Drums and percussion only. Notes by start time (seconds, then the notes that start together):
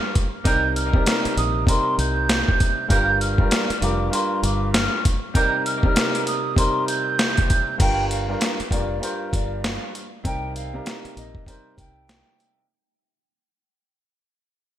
0.15 kick, closed hi-hat
0.45 kick, closed hi-hat
0.76 closed hi-hat
0.94 kick
1.06 snare, closed hi-hat
1.25 closed hi-hat
1.38 closed hi-hat
1.67 kick, closed hi-hat
1.99 closed hi-hat
2.29 snare, closed hi-hat
2.48 kick
2.60 kick, closed hi-hat
2.90 kick, closed hi-hat
3.21 closed hi-hat
3.38 kick
3.51 snare, closed hi-hat
3.70 closed hi-hat
3.82 closed hi-hat
4.13 closed hi-hat
4.44 closed hi-hat
4.74 snare, closed hi-hat
5.05 kick, closed hi-hat
5.35 kick, closed hi-hat
5.66 closed hi-hat
5.83 kick
5.96 snare, closed hi-hat
6.15 closed hi-hat
6.27 closed hi-hat
6.56 kick, closed hi-hat
6.88 closed hi-hat
7.19 snare, closed hi-hat
7.37 kick, closed hi-hat
7.50 kick, closed hi-hat
7.80 kick, closed hi-hat, crash
8.11 closed hi-hat
8.41 snare, closed hi-hat
8.60 closed hi-hat
8.71 kick, closed hi-hat
9.03 closed hi-hat
9.33 kick, closed hi-hat
9.64 snare, closed hi-hat
9.95 closed hi-hat
10.25 kick, closed hi-hat
10.56 closed hi-hat
10.86 snare, closed hi-hat
11.05 closed hi-hat
11.17 closed hi-hat
11.35 kick
11.46 kick, closed hi-hat
11.78 kick, closed hi-hat
12.09 snare, closed hi-hat
12.40 closed hi-hat